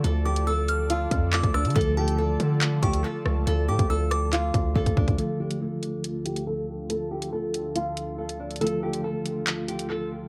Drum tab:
HH |x-----x-----x---x---x-----x---xx|xx----x-----x---x---x-x---------|x-----x-----x---x---x-----x---x-|x-----x-----x---x---x-x---------|
CP |------------------------x-------|----------------x---------------|----------------x---------------|--------------------------------|
SD |----------------------------r---|----------------------------r---|------------r-------------------|--------------------------------|
BD |--------------------o-----o-----|o-------------------o-----------|------o-------------o---o-o-o-o-|--------------------------------|

HH |x-----x-----x---x---x-----x---xx|xx----x-----x---x---x-x---------|
CP |--------------------------------|----------------x---------------|
SD |--------------------------------|--------------------------------|
BD |--------------------------------|--------------------------------|